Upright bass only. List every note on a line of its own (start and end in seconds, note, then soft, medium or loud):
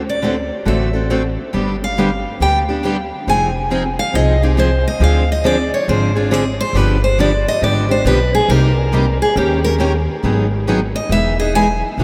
0.00 0.49 D2 medium
0.66 1.36 A1 medium
1.54 2.23 G1 medium
2.40 3.10 D2 medium
3.27 3.97 F1 medium
4.14 4.84 C2 medium
5.00 5.70 D2 medium
5.88 6.58 G#1 medium
6.73 7.44 G1 medium
7.62 7.99 G#1 medium
8.05 8.42 B1 medium
8.48 9.19 C2 medium
9.36 10.06 D#2 loud
10.23 10.94 G#1 medium
11.09 11.80 E1 medium
11.98 12.04 B1 medium